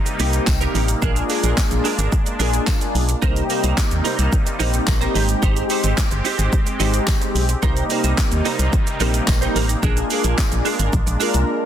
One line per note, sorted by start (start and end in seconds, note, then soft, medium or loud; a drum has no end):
0.00 1.00 C3 medium
0.00 1.00 G3 medium
0.00 3.18 A#3 medium
0.00 1.00 D#4 loud
0.06 muted clean electric guitar stroke soft
0.06 closed hi-hat medium
0.06 shaker medium
0.19 0.40 C2 loud
0.19 0.83 A#3 medium
0.19 0.84 C4 medium
0.19 0.39 D#4 medium
0.19 0.84 D#4 medium
0.19 0.84 G4 loud
0.19 0.33 G4 medium
0.19 0.32 A#4 loud
0.19 open hi-hat medium
0.19 shaker medium
0.33 muted clean electric guitar stroke medium
0.33 closed hi-hat medium
0.33 shaker medium
0.47 0.67 C2 loud
0.47 muted clean electric guitar stroke soft
0.47 kick loud
0.47 snare medium
0.47 clap loud
0.47 tambourine medium
0.47 shaker medium
0.61 0.73 D#4 medium
0.61 0.74 G4 medium
0.61 0.75 A#4 medium
0.61 closed hi-hat medium
0.61 shaker medium
0.74 0.95 A1 loud
0.74 0.94 D#4 medium
0.74 0.88 G4 medium
0.74 0.87 A#4 medium
0.74 open hi-hat medium
0.74 shaker soft
0.88 muted clean electric guitar stroke medium
0.88 closed hi-hat medium
0.88 shaker medium
1.02 1.22 A#1 loud
1.02 3.20 G#3 medium
1.02 1.87 A#3 medium
1.02 1.22 D4 medium
1.02 1.87 D4 medium
1.02 3.20 D4 medium
1.02 1.88 F4 medium
1.02 1.88 G#4 loud
1.02 1.22 G#4 loud
1.02 1.23 A#4 loud
1.02 kick loud
1.02 shaker medium
1.16 closed hi-hat medium
1.16 shaker medium
1.29 1.44 D4 medium
1.29 1.43 G#4 medium
1.29 1.42 A#4 medium
1.29 open hi-hat medium
1.29 shaker medium
1.43 1.54 A#1 loud
1.43 1.56 D4 medium
1.43 1.57 G#4 medium
1.43 1.57 A#4 medium
1.43 closed hi-hat medium
1.43 shaker medium
1.57 muted clean electric guitar stroke soft
1.57 kick loud
1.57 snare loud
1.57 clap loud
1.57 tambourine medium
1.57 shaker medium
1.71 1.81 A#1 medium
1.71 muted clean electric guitar stroke soft
1.71 closed hi-hat medium
1.71 shaker medium
1.84 1.99 D4 medium
1.84 1.98 G#4 medium
1.84 1.97 A#4 loud
1.84 open hi-hat medium
1.84 shaker soft
1.98 2.08 G#1 medium
1.98 2.15 D4 medium
1.98 2.14 G#4 medium
1.98 2.14 A#4 medium
1.98 closed hi-hat medium
1.98 shaker medium
2.12 kick loud
2.12 shaker medium
2.26 muted clean electric guitar stroke soft
2.26 closed hi-hat medium
2.26 shaker medium
2.39 2.60 A#1 loud
2.39 3.04 A#3 medium
2.39 2.59 D4 medium
2.39 3.04 D4 medium
2.39 3.04 F4 medium
2.39 3.04 G#4 loud
2.39 2.54 G#4 medium
2.39 2.52 A#4 loud
2.39 open hi-hat medium
2.39 shaker medium
2.53 muted clean electric guitar stroke medium
2.53 closed hi-hat medium
2.53 shaker medium
2.67 muted clean electric guitar stroke soft
2.67 kick loud
2.67 snare medium
2.67 clap loud
2.67 tambourine medium
2.67 shaker medium
2.81 muted clean electric guitar stroke soft
2.81 closed hi-hat medium
2.81 shaker medium
2.95 3.15 B1 loud
2.95 open hi-hat medium
2.95 shaker soft
3.09 muted clean electric guitar stroke soft
3.09 closed hi-hat medium
3.09 shaker medium
3.22 3.42 C2 loud
3.22 5.13 C3 medium
3.22 5.13 G3 medium
3.22 4.07 A#3 medium
3.22 5.13 A#3 medium
3.22 4.08 C4 medium
3.22 3.42 D#4 medium
3.22 4.08 D#4 medium
3.22 5.13 D#4 medium
3.22 4.08 G4 loud
3.22 3.42 A#4 medium
3.22 3.43 C5 medium
3.22 kick loud
3.22 shaker medium
3.36 closed hi-hat medium
3.36 shaker medium
3.50 3.64 D#4 medium
3.50 3.63 A#4 medium
3.50 3.62 C5 medium
3.50 open hi-hat medium
3.50 shaker medium
3.63 3.74 C2 loud
3.63 3.76 D#4 medium
3.63 3.77 A#4 medium
3.63 3.77 C5 medium
3.63 closed hi-hat medium
3.63 shaker medium
3.77 kick loud
3.77 snare loud
3.77 clap loud
3.77 tambourine medium
3.77 shaker medium
3.91 4.01 D#2 medium
3.91 muted clean electric guitar stroke soft
3.91 closed hi-hat medium
3.91 shaker medium
4.04 4.19 D#4 medium
4.04 4.18 A#4 medium
4.04 4.17 C5 medium
4.04 open hi-hat medium
4.04 shaker soft
4.18 4.29 C2 loud
4.18 4.35 D#4 medium
4.18 4.34 A#4 medium
4.18 4.34 C5 medium
4.18 closed hi-hat medium
4.18 shaker medium
4.33 kick loud
4.33 shaker medium
4.46 muted clean electric guitar stroke medium
4.46 closed hi-hat medium
4.46 shaker medium
4.59 4.80 A#1 loud
4.59 5.15 A#3 medium
4.59 5.14 C4 medium
4.59 4.79 D#4 loud
4.59 5.14 D#4 medium
4.59 5.14 G4 loud
4.59 4.74 A#4 loud
4.59 4.72 C5 loud
4.59 open hi-hat medium
4.59 shaker medium
4.73 muted clean electric guitar stroke medium
4.73 closed hi-hat medium
4.73 shaker medium
4.87 5.08 A#1 loud
4.87 muted clean electric guitar stroke soft
4.87 kick loud
4.87 snare medium
4.87 clap loud
4.87 tambourine medium
4.87 shaker medium
5.01 5.13 D#4 medium
5.01 5.15 A#4 medium
5.01 5.15 C5 medium
5.01 closed hi-hat medium
5.01 shaker medium
5.14 5.35 G#1 loud
5.14 6.03 G#3 medium
5.14 7.60 G#3 medium
5.14 7.60 C4 medium
5.14 6.03 C4 medium
5.14 5.34 D#4 medium
5.14 6.03 D#4 medium
5.14 7.60 G4 medium
5.14 6.03 G4 loud
5.14 5.29 G4 loud
5.14 5.27 C5 loud
5.14 open hi-hat medium
5.14 shaker soft
5.29 muted clean electric guitar stroke medium
5.29 closed hi-hat medium
5.29 shaker medium
5.42 5.63 G#1 loud
5.42 5.62 D#4 medium
5.42 5.62 G4 loud
5.42 5.63 C5 loud
5.42 kick loud
5.42 shaker medium
5.57 closed hi-hat medium
5.57 shaker medium
5.70 5.84 D#4 medium
5.70 5.83 G4 medium
5.70 5.82 C5 medium
5.70 open hi-hat medium
5.70 shaker medium
5.83 5.94 G#1 loud
5.83 5.96 D#4 medium
5.83 5.97 G4 medium
5.83 5.97 C5 medium
5.83 closed hi-hat medium
5.83 shaker medium
5.97 muted clean electric guitar stroke soft
5.97 kick loud
5.97 snare loud
5.97 clap loud
5.97 tambourine medium
5.97 shaker medium
6.11 6.21 G1 medium
6.11 muted clean electric guitar stroke medium
6.11 closed hi-hat medium
6.11 shaker medium
6.24 6.39 D#4 medium
6.24 6.38 G4 medium
6.24 6.37 C5 medium
6.24 open hi-hat medium
6.24 shaker medium
6.38 6.49 G#1 loud
6.38 6.55 D#4 medium
6.38 6.54 G4 medium
6.38 6.54 C5 medium
6.38 closed hi-hat medium
6.38 shaker medium
6.53 kick loud
6.53 shaker medium
6.66 muted clean electric guitar stroke medium
6.66 closed hi-hat medium
6.66 shaker medium
6.80 7.00 G#1 medium
6.80 7.44 G#3 medium
6.80 7.44 C4 medium
6.80 7.00 D#4 medium
6.80 7.44 D#4 medium
6.80 7.44 G4 loud
6.80 6.94 G4 medium
6.80 6.92 C5 loud
6.80 open hi-hat medium
6.80 shaker medium
6.94 muted clean electric guitar stroke soft
6.94 closed hi-hat medium
6.94 shaker medium
7.07 muted clean electric guitar stroke soft
7.07 kick loud
7.07 snare medium
7.07 clap loud
7.07 tambourine medium
7.07 shaker medium
7.21 muted clean electric guitar stroke medium
7.21 closed hi-hat medium
7.21 shaker medium
7.35 7.55 B1 medium
7.35 open hi-hat medium
7.35 shaker soft
7.49 muted clean electric guitar stroke medium
7.49 closed hi-hat medium
7.49 shaker medium
7.62 7.83 C2 loud
7.62 9.81 C3 medium
7.62 9.81 G3 medium
7.62 8.48 A#3 medium
7.62 11.65 A#3 medium
7.62 8.48 C4 medium
7.62 7.82 D#4 medium
7.62 9.81 D#4 medium
7.62 8.48 D#4 medium
7.62 8.48 G4 loud
7.62 7.83 A#4 loud
7.62 7.83 C5 loud
7.62 kick loud
7.62 shaker medium
7.77 closed hi-hat medium
7.77 shaker medium
7.90 8.04 D#4 medium
7.90 8.03 A#4 medium
7.90 8.02 C5 medium
7.90 open hi-hat medium
7.90 shaker medium
8.04 8.14 C2 medium
8.04 8.16 D#4 medium
8.04 8.17 A#4 medium
8.04 8.17 C5 medium
8.04 closed hi-hat medium
8.04 shaker medium
8.17 muted clean electric guitar stroke soft
8.17 kick loud
8.17 snare loud
8.17 clap loud
8.17 tambourine medium
8.17 shaker medium
8.31 8.42 D#2 medium
8.31 muted clean electric guitar stroke medium
8.31 closed hi-hat medium
8.31 shaker medium
8.45 8.59 D#4 loud
8.45 8.58 A#4 loud
8.45 8.57 C5 loud
8.45 open hi-hat medium
8.45 shaker medium
8.59 8.69 C2 medium
8.59 8.75 D#4 medium
8.59 8.75 A#4 medium
8.59 8.74 C5 medium
8.59 closed hi-hat medium
8.59 shaker medium
8.73 kick loud
8.73 shaker medium
8.87 muted clean electric guitar stroke soft
8.87 closed hi-hat medium
8.87 shaker medium
9.00 9.20 A#1 medium
9.00 9.64 A#3 loud
9.00 9.64 C4 medium
9.00 9.20 D#4 medium
9.00 9.64 D#4 medium
9.00 9.65 G4 loud
9.00 9.14 A#4 loud
9.00 9.13 C5 medium
9.00 open hi-hat medium
9.00 shaker medium
9.14 muted clean electric guitar stroke medium
9.14 closed hi-hat medium
9.14 shaker medium
9.27 9.48 A#1 loud
9.27 muted clean electric guitar stroke soft
9.27 kick loud
9.27 snare medium
9.27 clap loud
9.27 tambourine medium
9.27 shaker medium
9.41 9.54 D#4 medium
9.41 9.55 A#4 medium
9.41 9.56 C5 medium
9.41 closed hi-hat medium
9.41 shaker medium
9.55 9.75 A1 medium
9.55 9.75 D#4 medium
9.55 9.69 A#4 medium
9.55 9.68 C5 loud
9.55 open hi-hat medium
9.55 shaker soft
9.69 muted clean electric guitar stroke medium
9.69 closed hi-hat medium
9.69 shaker medium
9.82 10.03 A#1 loud
9.82 11.65 G#3 medium
9.82 10.68 A#3 medium
9.82 10.02 D4 medium
9.82 10.68 D4 medium
9.82 11.65 D4 medium
9.82 10.68 F4 medium
9.82 10.68 G#4 loud
9.82 10.03 G#4 medium
9.82 10.03 A#4 loud
9.82 kick loud
9.82 shaker medium
9.97 closed hi-hat medium
9.97 shaker medium
10.10 10.25 D4 medium
10.10 10.24 G#4 medium
10.10 10.23 A#4 medium
10.10 open hi-hat medium
10.10 shaker medium
10.24 10.34 A#1 loud
10.24 10.37 D4 medium
10.24 10.37 G#4 medium
10.24 10.38 A#4 medium
10.24 closed hi-hat medium
10.24 shaker medium
10.38 muted clean electric guitar stroke soft
10.38 kick loud
10.38 snare loud
10.38 clap loud
10.38 tambourine medium
10.38 shaker medium
10.51 10.62 A#1 medium
10.51 muted clean electric guitar stroke soft
10.51 closed hi-hat medium
10.51 shaker medium
10.65 10.80 D4 medium
10.65 10.79 G#4 medium
10.65 10.78 A#4 medium
10.65 open hi-hat medium
10.65 shaker medium
10.79 10.89 G#1 loud
10.79 10.92 D4 soft
10.79 10.92 G#4 medium
10.79 10.93 A#4 medium
10.79 closed hi-hat medium
10.79 shaker medium
10.93 11.03 A#1 loud
10.93 muted clean electric guitar stroke soft
10.93 kick loud
10.93 shaker medium
11.07 11.17 A#1 medium
11.07 muted clean electric guitar stroke soft
11.07 closed hi-hat medium
11.07 shaker medium
11.20 11.65 A#3 medium
11.20 11.40 D4 medium
11.20 11.65 D4 medium
11.20 11.65 F4 medium
11.20 11.34 G#4 medium
11.20 11.65 A#4 loud
11.20 11.33 A#4 medium
11.20 open hi-hat medium
11.20 shaker medium
11.34 11.44 C2 medium
11.34 muted clean electric guitar stroke soft
11.34 closed hi-hat medium
11.34 shaker medium